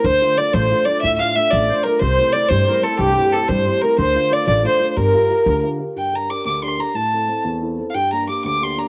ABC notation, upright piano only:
X:1
M:6/8
L:1/8
Q:3/8=122
K:Gdor
V:1 name="Upright piano"
D, [A,DF] [A,DF] A, [A,DF] [A,DF] | A,, [A,DF] [A,DF] A, [A,DF] [A,DF] | C, [A,CE] [A,CE] G, [A,CE] [A,CE] | G,, [A,CE] [A,CE] G, [A,CE] [A,CE] |
D, [A,DF] [A,DF] A, [A,DF] [A,DF] | G, [FGB] [FG] D, [FGB] [FGB] | G,, [DGB] [DGB] D,, [DGB] [DGB] | A,, [CEA] [CEA] E,, [CEA] [CEA] |
G,, [B,D] [B,DG] D,, [B,DG] [B,DG] |]